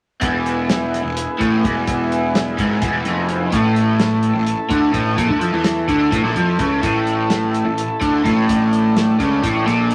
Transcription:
0.21 E1 E2 B3 E4 G#4, kick, closed hi-hat
0.46 closed hi-hat
0.69 snare, closed hi-hat
0.94 snare, closed hi-hat
1.04 E1 E2
1.17 closed hi-hat
1.39 A1 A2, kick, closed hi-hat
1.64 E1 E2, kick, closed hi-hat
1.87 kick, closed hi-hat
2.12 closed hi-hat
2.35 snare, closed hi-hat
2.58 G#1 G#2, kick, closed hi-hat
2.81 E1 E2, kick, closed hi-hat
3.05 F1 F2, closed hi-hat
3.29 closed hi-hat
3.52 A1 A2 A3 A4, kick, closed hi-hat
3.76 closed hi-hat
4.00 snare, closed hi-hat
4.23 closed hi-hat
4.34 A1 A2
4.47 closed hi-hat
4.70 D2 D3, kick, closed hi-hat
4.93 A1 A2, kick, closed hi-hat
5.17 A#1 A#2, kick, closed hi-hat
5.29 D2 D3, kick
5.40 F2 F3, closed hi-hat
5.53 E2 E3
5.64 snare, closed hi-hat
5.88 D2 D3, kick, closed hi-hat
6.12 A1 A2, kick, snare, closed hi-hat
6.24 A#1 A#2
6.36 F2 F3, closed hi-hat
6.59 C#2 C#3, kick, closed hi-hat
6.82 A1 A2, kick, closed hi-hat
7.07 closed hi-hat
7.30 snare, closed hi-hat
7.54 closed hi-hat
7.66 A1 A2
7.78 closed hi-hat
8.01 D2 D3, kick, closed hi-hat
8.24 A1 A2, kick, closed hi-hat
8.48 D4, kick, closed hi-hat
8.73 closed hi-hat
8.97 snare, closed hi-hat
9.20 C#2 C#3, kick, closed hi-hat
9.43 A1 A2, kick, closed hi-hat
9.66 A#1 A#2, snare, closed hi-hat
9.91 snare, closed hi-hat

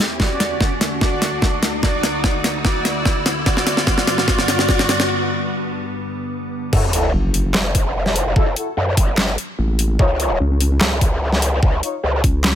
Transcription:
Already playing: E2 E3 B3 E4 G4, riser
0.20 D2 D3 A3 F#4 D5, kick, snare
0.40 snare, closed hi-hat
0.61 kick, snare
0.81 snare, closed hi-hat
1.01 F#4 D5, kick, snare
1.22 snare, closed hi-hat
1.42 kick, snare
1.63 snare, closed hi-hat
1.83 F#4 D5, kick, snare
2.03 snare, closed hi-hat
2.24 kick, snare
2.44 snare, closed hi-hat
2.65 F#4 D5, kick, snare
2.85 snare, closed hi-hat
3.05 kick, snare
3.26 snare, closed hi-hat
3.46 G2 D3 G3 B3 F#4 D5, kick, snare
3.57 snare
3.67 snare, closed hi-hat
3.77 snare
3.87 F#4 D5, kick, snare
3.98 snare
4.07 snare, closed hi-hat
4.18 snare
4.28 F#4 D5, kick, snare
4.39 snare
4.48 snare, closed hi-hat
4.59 snare
4.69 F#4 D5, kick, snare
4.79 snare
4.89 snare, closed hi-hat
5.00 snare
6.73 F#1 E4 F#4 A4, kick, crash, sub drop
6.93 E4 F#4 A4, closed hi-hat
7.14 F#1
7.34 closed hi-hat
7.54 F#1, snare, clap
7.75 kick, closed hi-hat
8.06 snare
8.16 closed hi-hat
8.36 F#1 E4 F#4 A4, kick
8.56 E4 F#4 A4, closed hi-hat
8.77 F#2
8.97 G1, kick, closed hi-hat
9.18 snare, clap
9.38 closed hi-hat
9.58 A1
9.79 closed hi-hat
9.99 C#2 D#4 F4 C#5, kick
10.20 D#4 F4 C#5, closed hi-hat
10.40 C#2
10.60 closed hi-hat
10.81 C#2, snare, clap
11.01 kick, closed hi-hat
11.32 snare
11.42 closed hi-hat
11.63 C#2, kick
11.83 D#4 F4 C#5, closed hi-hat
12.03 C#2
12.24 C#2, kick, closed hi-hat
12.44 snare, clap

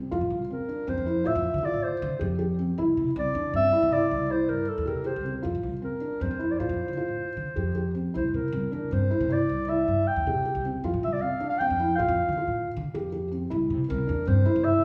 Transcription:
0.11 F2 F4
0.21 A2
0.30 C2
0.50 C4 A#4
0.68 D4
0.87 F2 C4 C5
0.98 F2
1.06 E4
1.24 A2 F4 E5
1.36 F2
1.54 D3
1.63 F4 D5
1.74 A2
1.83 C5
2.02 D3
2.19 F2 G4
2.39 G4
2.59 C4
2.78 C2 E4
2.97 C3
3.16 C2 C4 D5
3.35 E2 D4
3.54 G2 C4 E5
3.72 E4
3.82 C3
3.92 E4 D5
4.11 C2
4.30 E4 C5
4.49 G2 A#4
4.69 A4
4.78 E2
4.86 C3 G4 A#4
5.05 G4 C5
5.16 C2
5.24 C4
5.43 F2 F4
5.55 A2
5.63 C2
5.82 C4 A#4
6.01 D4
6.20 F2 C4 C5
6.31 F2
6.39 E4
6.51 D5
6.59 A2 F4 C5
6.69 F2
6.88 D3
6.97 F4
7.08 A2
7.37 D3
7.56 F2 G4
7.75 G4
7.95 C4
8.14 C2 E4 C5
8.27 C5
8.34 C3 A#4
8.53 C2 C4
8.72 E2 D4 A#4
8.91 G2 C4 C5
9.11 E4
9.20 C3
9.29 E4 D5
9.49 C2
9.68 E4 E5
9.88 G2
10.07 G5
10.16 E2
10.27 C3 G4
10.45 G4
10.55 C2
10.65 C4
10.84 F2 F4
10.94 A2
11.03 C2 E5
11.13 D5
11.21 C4 F5
11.40 D4
11.49 F5
11.59 F2 C4 G5
11.70 F2
11.80 E4
11.96 A2 F4 F5
12.08 F2
12.29 D3
12.38 F4
12.48 A2
12.77 D3
12.94 F2 G4
13.12 G4
13.31 C4
13.50 C2 E4
13.70 C3
13.88 C2 C4 A#4
14.07 E2 D4
14.26 G2 C4 C5
14.46 E4
14.56 C3
14.64 E4 E5

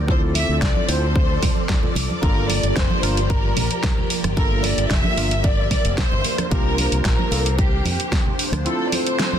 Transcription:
Already playing: D2 F3
0.07 C4 E4 F4 A4 C5 D5, kick
0.35 E5, open hi-hat, muted conga
0.49 D2
0.62 D5, kick, snare
0.76 high conga
0.88 D2 C4 E4 F4 C5, open hi-hat, muted conga
1.16 kick
1.42 kick, open hi-hat, high conga, low conga
1.57 muted conga
1.69 kick, snare, low conga
1.83 low conga
1.95 C2, open hi-hat, muted conga
2.10 high conga
2.22 G1 A#3 D4 F4 G4 A4 A#4, kick, closed hi-hat
2.48 D5, open hi-hat, muted conga
2.63 G1, closed hi-hat
2.75 C5, kick, snare, closed hi-hat
2.90 high conga
3.02 G1 A#3 D4 F4 A#4, open hi-hat, muted conga
3.17 closed hi-hat
3.30 A#4, kick, closed hi-hat
3.56 A#1, open hi-hat, high conga, low conga
3.71 closed hi-hat
3.83 kick, snare, closed hi-hat, low conga
3.98 low conga
4.10 open hi-hat
4.24 G1, cross-stick, closed hi-hat, high conga
4.36 A#3 D4 F4 A4 A#4 E5, kick, closed hi-hat
4.63 D5, open hi-hat, muted conga
4.78 G1, closed hi-hat
4.90 F1 E5, kick, snare, closed hi-hat
5.04 high conga
5.17 G1 A#3 D4 F4 A#4, open hi-hat, muted conga
5.31 closed hi-hat
5.44 D5, kick, closed hi-hat
5.71 D5, kick, open hi-hat, high conga, low conga
5.85 F1, closed hi-hat, muted conga
5.98 C5, kick, snare, closed hi-hat, low conga
6.12 G1, low conga
6.24 D4 C5, open hi-hat, muted conga
6.38 cross-stick, closed hi-hat, high conga
6.50 C2 A#3 D4 F4 G4 A#4, kick, closed hi-hat
6.78 open hi-hat, muted conga
6.92 C2, closed hi-hat
7.05 A#1 A#4, kick, snare, closed hi-hat
7.19 high conga
7.31 C2 A#3 D4 F4 A4, open hi-hat, muted conga
7.46 closed hi-hat
7.59 G4, kick, closed hi-hat
7.85 F2, open hi-hat, high conga, low conga
8.00 closed hi-hat
8.12 kick, snare, closed hi-hat, low conga
8.26 low conga
8.39 open hi-hat
8.52 D2, cross-stick, closed hi-hat, high conga
8.65 A3 C4 E4 F4 A4, closed hi-hat
8.86 D5
8.92 C5, open hi-hat, muted conga
9.07 closed hi-hat
9.19 snare, closed hi-hat
9.33 high conga

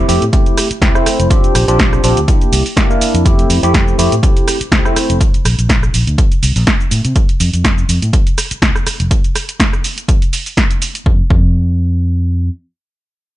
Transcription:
0.08 F2 A3 C4 E4 G4, open hi-hat, shaker
0.22 A2, closed hi-hat, shaker
0.33 A3 C4 E4 G4, kick, closed hi-hat, shaker
0.46 closed hi-hat, shaker
0.58 cross-stick, open hi-hat, shaker
0.71 muted fingered electric bass stroke, closed hi-hat, shaker
0.82 C2 A3 C4 E4 G4, kick, snare, closed hi-hat, shaker
0.95 A3 C4 E4 C5, cross-stick, shaker
1.06 muted fingered electric bass stroke, cross-stick, open hi-hat, shaker
1.20 F1, closed hi-hat, shaker
1.30 C4 D4 F4 G4, kick, closed hi-hat, shaker
1.44 muted fingered electric bass stroke, closed hi-hat, shaker
1.55 A#1, cross-stick, open hi-hat, shaker
1.68 A#1 C4 D4 F4 G4, closed hi-hat, shaker
1.79 kick, snare, closed hi-hat, shaker
1.93 cross-stick, shaker
2.03 A#1 C4 D4 F4 G4, open hi-hat, shaker
2.17 D2, closed hi-hat, shaker
2.28 A#3 D4 E4 G4, kick, closed hi-hat, shaker
2.41 muted fingered electric bass stroke, closed hi-hat, shaker
2.52 C2, open hi-hat, shaker
2.66 open hi-hat, shaker
2.76 A#3 D4 E4 G4, kick, snare, closed hi-hat, shaker
2.90 A#3 D4 E4 A#4, shaker
3.01 muted fingered electric bass stroke, open hi-hat, shaker
3.14 F2, closed hi-hat, shaker
3.25 A3 C4 E4 G4, kick, closed hi-hat, shaker
3.39 closed hi-hat, shaker
3.50 F2, open hi-hat, shaker
3.63 F2 A3 C4 E4 G4, closed hi-hat, shaker
3.74 kick, snare, closed hi-hat, shaker
3.88 shaker
3.98 F2 A3 C4 E4 G4, open hi-hat, shaker
4.12 A2, closed hi-hat, shaker
4.23 A3 C4 E4 G4, kick, closed hi-hat, shaker
4.37 closed hi-hat, shaker
4.48 cross-stick, open hi-hat, shaker
4.61 muted fingered electric bass stroke, closed hi-hat, shaker
4.72 C2 A3 C4 E4 G4, kick, snare, closed hi-hat, shaker
4.85 A3 C4 E4 C5, cross-stick, shaker
4.96 muted fingered electric bass stroke, cross-stick, open hi-hat, shaker
5.10 F1, closed hi-hat, shaker
5.20 kick, closed hi-hat, shaker
5.34 muted fingered electric bass stroke, closed hi-hat, shaker
5.45 A#1, cross-stick, open hi-hat, shaker
5.59 A#1, closed hi-hat, shaker
5.69 kick, snare, closed hi-hat, shaker
5.83 cross-stick, shaker
5.94 A#1, open hi-hat, shaker
6.07 D2, closed hi-hat, shaker
6.18 kick, closed hi-hat, shaker
6.32 muted fingered electric bass stroke, closed hi-hat, shaker
6.43 C2, open hi-hat, shaker
6.56 A#1, open hi-hat, shaker
6.67 kick, snare, closed hi-hat, shaker
6.80 shaker
6.91 A2, open hi-hat, shaker
7.05 C3, closed hi-hat, shaker
7.16 kick, closed hi-hat, shaker
7.29 closed hi-hat, shaker
7.40 F2, open hi-hat, shaker
7.54 F2, closed hi-hat, shaker
7.64 kick, snare, closed hi-hat, shaker
7.78 shaker
7.89 F2, open hi-hat, shaker
8.02 A2, closed hi-hat, shaker
8.13 kick, closed hi-hat, shaker
8.27 closed hi-hat, shaker
8.38 cross-stick, open hi-hat, shaker
8.51 muted fingered electric bass stroke, closed hi-hat, shaker
8.62 C2, kick, snare, closed hi-hat, shaker
8.75 cross-stick, shaker
8.87 muted fingered electric bass stroke, cross-stick, open hi-hat, shaker
9.00 F1, closed hi-hat, shaker
9.11 kick, closed hi-hat, shaker
9.24 closed hi-hat, shaker
9.35 cross-stick, open hi-hat, shaker
9.49 closed hi-hat, shaker
9.60 kick, snare, closed hi-hat, shaker
9.73 cross-stick, shaker
9.84 open hi-hat, shaker
9.98 closed hi-hat, shaker
10.08 kick, closed hi-hat, shaker
10.22 closed hi-hat, shaker
10.33 open hi-hat, shaker
10.46 open hi-hat, shaker
10.57 kick, snare, closed hi-hat, shaker
10.71 closed hi-hat, shaker
10.82 open hi-hat, shaker
10.95 closed hi-hat, shaker
11.06 F2, kick
11.30 F2, kick

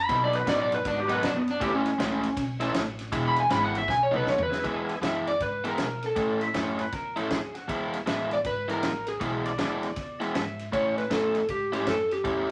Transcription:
Already playing: B5
0.09 B2 E3 F#3 G3 B3 C4 D#4 E4 G4, kick, snare, ride
0.24 D5
0.32 D#3 F#3 B3 D#4 F#4 B4, snare, ride
0.47 A2 B2 F#3 B3 D#4 D5, snare, ride
0.62 D5
0.72 B4, snare, ride
0.84 G#2 D#3 F#3 B3 D4 D#4 F#4, kick, snare, ride
1.00 G4
1.09 B2 F#3 B3 D#4 B4, snare, ride
1.22 F#2 D4, snare, ride
1.37 B3
1.47 D4, snare, ride
1.60 E2 A2 E3 A3 C#4 E4 G4 A4, kick, snare, ride
1.75 C#4
1.85 snare, ride
1.98 C#2 A2 A3 C#4 E4, snare, ride
2.23 snare, ride
2.37 B1, kick, snare, ride
2.59 A2 E3 A3 C#4 E4 A4, snare, ride
2.74 A1, snare, ride
2.99 snare, ride
3.12 E1 E3 G#3 B3 E4, kick, snare, ride
3.28 B5
3.36 G#5, snare, ride
3.50 G#1 E3 G#3 B3 E4 B5, snare, ride
3.64 F#5
3.75 E5, snare, ride
3.88 B1 G#5, kick, snare
4.03 C#5
4.11 B2 F#3 B3 D#4, mid tom
4.16 B4
4.26 D#2 C#5, snare
4.38 floor tom
4.43 B4
4.49 E3 G#3 B3 E4 G#4, snare
4.64 E2 E3 G#3 B3 E4, kick, snare, ride
4.88 muted upright bass stroke, snare, ride
5.02 F#2 E3 G#3 B3 E4 E5, snare, ride
5.27 D5, snare, ride
5.40 G#2 B4, kick, snare, ride
5.64 E3 G#3 B3 E4 A#4, snare, ride
5.78 B2, snare, ride
6.03 A4, snare, ride
6.16 A2 A3 C#4 E4, kick, snare, ride
6.41 E5, snare, ride
6.54 F#2 A2 A3 C#4 E4 C#5, snare, ride
6.79 B4, snare, ride
6.92 E2 A#4, kick, snare, ride
7.16 A2 A3 C#4 E4 A4, snare, ride
7.30 D#2 G#4, snare, ride
7.54 F#4, snare, ride
7.68 E2 E3 G#3 B3 E4, kick, snare, ride
7.93 snare, ride
8.06 A1 E3 G#3 B3 E4 E5, snare, ride
8.31 D5, snare, ride
8.44 G#1 B4, kick, snare, ride
8.68 E3 G#3 B3 E4 A#4, snare, ride
8.83 A1, snare, ride
9.07 G#4, snare, ride
9.20 B1 E3 G#3 B3 E4, kick, snare, ride
9.45 D5, snare, ride
9.58 D#2 E3 G#3 B3 E4 D5, snare, ride
9.83 snare, ride
9.96 E2, kick, snare, ride
10.20 E3 G#3 B3 E4 E5, snare, ride
10.35 G#2 E5, snare, ride
10.59 snare, ride
10.72 A2 A3 C#4 E4 C#5, kick, snare, ride
10.98 B4, snare, ride
11.10 E2 A2 A3 C#4 E4 A4, snare, ride
11.35 snare, ride
11.48 G#2 G4, kick, snare, ride
11.72 A2 A3 C#4 E4 G4, snare, ride
11.87 F#2 A4, snare, ride
12.11 G4, snare, ride
12.24 E2 A2 A3 C#4 E4, kick, snare, ride

